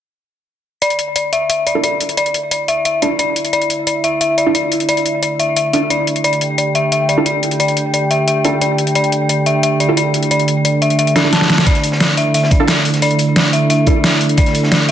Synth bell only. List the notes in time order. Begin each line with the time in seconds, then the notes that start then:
0.82 D5
1.16 D5
1.33 E5
1.50 E5
1.67 D5
1.84 D5
2.17 D5
2.51 D5
2.68 E5
2.85 E5
3.02 D5
3.19 D5
3.53 D5
3.87 D5
4.04 E5
4.21 E5
4.38 D5
4.55 D5
4.89 D5
5.23 D5
5.40 E5
5.57 E5
5.73 E5
5.90 D5
6.24 D5
6.58 D5
6.75 E5
6.92 E5
7.09 D5
7.26 D5
7.60 D5
7.94 D5
8.11 E5
8.28 E5
8.45 D5
8.62 D5
8.95 D5
9.29 D5
9.46 E5
9.63 E5
9.80 D5
9.97 D5
10.31 D5
10.65 D5
10.82 E5
10.99 E5
11.16 D5
11.33 A5
11.67 D5
12.00 D5
12.17 E5
12.34 E5
12.51 D5
12.68 D5
13.02 D5
13.36 D5
13.53 E5
13.70 E5
13.87 D5
14.04 D5
14.38 D5
14.72 D5